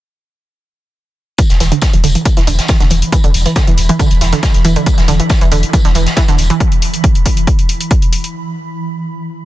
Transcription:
1.38 synth drone E3, synth arpeggio sound E3, kick, closed hi-hat, tambourine
1.50 sub bass E1, snare, closed hi-hat
1.60 sub bass E1, synth arpeggio sound E3, snare, open hi-hat, tambourine
1.72 synth arpeggio sound D3, closed hi-hat
1.81 kick, snare, closed hi-hat, tambourine
1.93 sub bass E1, synth arpeggio sound E3, closed hi-hat
2.04 sub bass E1, synth arpeggio sound D3, open hi-hat, tambourine
2.15 synth arpeggio sound E3, closed hi-hat
2.25 kick, closed hi-hat, tambourine
2.37 sub bass E1, synth arpeggio sound E3, snare, closed hi-hat
2.47 sub bass E1, synth arpeggio sound D3, open hi-hat, tambourine
2.59 snare, closed hi-hat
2.68 synth arpeggio sound E3, kick, snare, closed hi-hat, tambourine
2.80 sub bass E1, synth arpeggio sound D3, snare, closed hi-hat
2.90 sub bass E1, synth arpeggio sound E3, open hi-hat, tambourine
3.02 closed hi-hat
3.12 synth arpeggio sound E3, kick, closed hi-hat, tambourine
3.24 sub bass E1, synth arpeggio sound D3, closed hi-hat
3.34 sub bass E1, open hi-hat, tambourine
3.45 synth arpeggio sound E3, closed hi-hat
3.56 synth arpeggio sound D3, kick, snare, closed hi-hat, tambourine
3.67 sub bass E1, synth arpeggio sound E3, closed hi-hat
3.77 sub bass E1, open hi-hat, tambourine
3.89 synth arpeggio sound E3, closed hi-hat
3.99 synth arpeggio sound D3, kick, closed hi-hat, tambourine
4.11 sub bass E1, closed hi-hat
4.21 sub bass E1, synth arpeggio sound E3, snare, open hi-hat, tambourine
4.33 synth arpeggio sound D3, snare, closed hi-hat
4.43 synth arpeggio sound E3, kick, snare, closed hi-hat, tambourine
4.54 sub bass E1, snare, closed hi-hat
4.65 sub bass E1, synth arpeggio sound E3, open hi-hat, tambourine
4.76 synth arpeggio sound D3, closed hi-hat
4.86 kick, closed hi-hat, tambourine
4.98 sub bass E1, synth arpeggio sound E3, snare, closed hi-hat
5.08 sub bass E1, synth arpeggio sound D3, snare, open hi-hat, tambourine
5.20 synth arpeggio sound E3, closed hi-hat
5.29 kick, snare, closed hi-hat, tambourine
5.41 sub bass E1, synth arpeggio sound E3, closed hi-hat
5.52 sub bass E1, synth arpeggio sound D3, open hi-hat, tambourine
5.63 closed hi-hat
5.73 synth arpeggio sound E3, kick, closed hi-hat, tambourine
5.85 sub bass E1, synth arpeggio sound D3, snare, closed hi-hat
5.95 sub bass E1, synth arpeggio sound E3, open hi-hat, tambourine
6.06 snare, closed hi-hat
6.17 synth arpeggio sound E3, kick, snare, closed hi-hat, tambourine
6.28 sub bass E1, synth arpeggio sound D3, snare, closed hi-hat
6.38 sub bass E1, open hi-hat, tambourine
6.50 synth arpeggio sound E3, closed hi-hat
6.60 kick, closed hi-hat
6.72 closed hi-hat
6.82 open hi-hat
6.94 closed hi-hat
7.04 kick, closed hi-hat
7.15 closed hi-hat
7.26 kick, open hi-hat
7.37 closed hi-hat
7.47 kick, closed hi-hat
7.59 closed hi-hat
7.69 open hi-hat
7.81 closed hi-hat
7.91 kick, closed hi-hat
8.02 closed hi-hat
8.13 open hi-hat
8.24 closed hi-hat

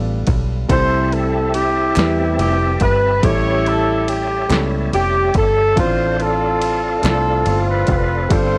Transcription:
Already playing: fingered electric bass A1, grand piano G2 G3 B3 D4 F4 A4
0.27 fingered electric bass B1, kick, ride
0.68 fingered electric bass C2, grand piano C3 G3 A3 C4 E4 A4, tonewheel organ C4 G4 E5 A5, horn section E4 A4 C5, kick, ride
1.12 horn section A4, ride
1.54 horn section E4 G4, ride
1.95 fingered electric bass E2, grand piano G3 A3 C4 E4 B4, snare, clap, ride
2.39 fingered electric bass F1, horn section G4, ride
2.80 fingered electric bass G1, horn section B4, kick, ride
3.22 fingered electric bass A1, grand piano A2 G3 A3 C4 E4 A4, horn section E4 G4 C#5, tonewheel organ C#5, kick, ride
3.30 grand piano C#4
3.66 horn section A4, ride
4.08 horn section G4, ride
4.49 fingered electric bass C#2, grand piano G3 A3 B3 E4 A4, snare, clap, ride
4.56 grand piano C#4
4.93 fingered electric bass F1, horn section G4, ride
5.34 fingered electric bass G1, horn section A4, kick, ride
5.75 fingered electric bass A1, grand piano A2 A3 C4 D4 F4 C5, horn section F4, tonewheel organ A4 D5 F5, kick, ride
5.80 horn section C5
6.20 horn section C4 F4 A4, ride
6.62 ride
7.02 fingered electric bass C2, grand piano A3 C4 D4 E4 C5, horn section C4 F4, snare, clap, ride
7.06 horn section A4
7.10 grand piano F4
7.46 fingered electric bass G1, ride
7.70 horn section B4
7.87 fingered electric bass F1, kick, ride
7.91 horn section B4
8.29 fingered electric bass G1, grand piano G2 G3 B3 D4 F4 A4, horn section F4 A4, tonewheel organ G5, kick, ride
8.33 grand piano C4, horn section C5

